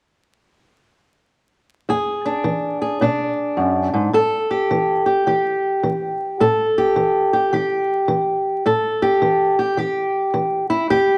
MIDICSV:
0, 0, Header, 1, 2, 480
1, 0, Start_track
1, 0, Tempo, 563380
1, 1603, Time_signature, 4, 2, 24, 8
1, 9524, End_track
2, 0, Start_track
2, 0, Title_t, "Steel-string acoustic guitar"
2, 0, Program_c, 0, 25
2, 1608, Note_on_c, 0, 40, 60
2, 1616, Note_on_c, 0, 68, 53
2, 1922, Note_on_c, 0, 62, 50
2, 2052, Note_off_c, 0, 40, 0
2, 2080, Note_on_c, 0, 52, 52
2, 2389, Note_off_c, 0, 68, 0
2, 2399, Note_on_c, 0, 68, 44
2, 2528, Note_off_c, 0, 52, 0
2, 2563, Note_off_c, 0, 62, 0
2, 2566, Note_on_c, 0, 47, 54
2, 2573, Note_on_c, 0, 62, 48
2, 3011, Note_off_c, 0, 47, 0
2, 3040, Note_on_c, 0, 42, 51
2, 3349, Note_off_c, 0, 42, 0
2, 3352, Note_on_c, 0, 44, 55
2, 3508, Note_off_c, 0, 68, 0
2, 3509, Note_off_c, 0, 62, 0
2, 3518, Note_off_c, 0, 44, 0
2, 3521, Note_on_c, 0, 45, 64
2, 3529, Note_on_c, 0, 69, 63
2, 3840, Note_on_c, 0, 67, 47
2, 3969, Note_off_c, 0, 45, 0
2, 4010, Note_on_c, 0, 52, 57
2, 4307, Note_off_c, 0, 69, 0
2, 4311, Note_off_c, 0, 67, 0
2, 4311, Note_on_c, 0, 67, 43
2, 4454, Note_off_c, 0, 52, 0
2, 4489, Note_on_c, 0, 52, 53
2, 4493, Note_off_c, 0, 67, 0
2, 4493, Note_on_c, 0, 67, 50
2, 4934, Note_off_c, 0, 52, 0
2, 4970, Note_on_c, 0, 52, 53
2, 5414, Note_off_c, 0, 52, 0
2, 5456, Note_on_c, 0, 45, 69
2, 5461, Note_on_c, 0, 69, 62
2, 5482, Note_off_c, 0, 67, 0
2, 5776, Note_on_c, 0, 67, 54
2, 5897, Note_off_c, 0, 45, 0
2, 5930, Note_on_c, 0, 52, 52
2, 6244, Note_off_c, 0, 69, 0
2, 6247, Note_off_c, 0, 67, 0
2, 6247, Note_on_c, 0, 67, 47
2, 6374, Note_off_c, 0, 52, 0
2, 6409, Note_off_c, 0, 67, 0
2, 6413, Note_on_c, 0, 52, 55
2, 6419, Note_on_c, 0, 67, 51
2, 6855, Note_off_c, 0, 52, 0
2, 6885, Note_on_c, 0, 52, 57
2, 7331, Note_off_c, 0, 52, 0
2, 7352, Note_off_c, 0, 67, 0
2, 7375, Note_on_c, 0, 45, 67
2, 7380, Note_on_c, 0, 69, 58
2, 7687, Note_on_c, 0, 67, 56
2, 7816, Note_off_c, 0, 45, 0
2, 7853, Note_on_c, 0, 52, 56
2, 8159, Note_off_c, 0, 67, 0
2, 8161, Note_off_c, 0, 69, 0
2, 8169, Note_on_c, 0, 67, 50
2, 8294, Note_off_c, 0, 52, 0
2, 8326, Note_off_c, 0, 67, 0
2, 8327, Note_on_c, 0, 52, 48
2, 8336, Note_on_c, 0, 67, 52
2, 8771, Note_off_c, 0, 52, 0
2, 8807, Note_on_c, 0, 52, 50
2, 9111, Note_off_c, 0, 67, 0
2, 9115, Note_on_c, 0, 64, 60
2, 9251, Note_off_c, 0, 52, 0
2, 9284, Note_off_c, 0, 64, 0
2, 9289, Note_on_c, 0, 67, 74
2, 9290, Note_on_c, 0, 40, 64
2, 9524, Note_off_c, 0, 40, 0
2, 9524, Note_off_c, 0, 67, 0
2, 9524, End_track
0, 0, End_of_file